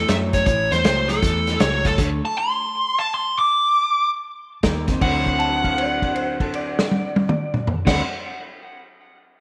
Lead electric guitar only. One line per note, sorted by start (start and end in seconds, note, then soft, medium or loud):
0.09 0.15 E5 medium
0.34 0.45 C#5 medium
0.47 0.70 C#5 loud
0.72 0.84 C5 medium
0.86 1.09 C5 loud
1.09 1.61 A4 medium
1.61 1.86 C#5 loud
1.86 1.98 A4 medium
2.25 2.37 A5 medium
2.38 2.98 C6 medium
2.99 3.12 A5 loud
3.14 3.37 C6 medium
3.39 4.11 D6 medium
5.02 7.77 F#5 medium
7.87 8.00 F#5 medium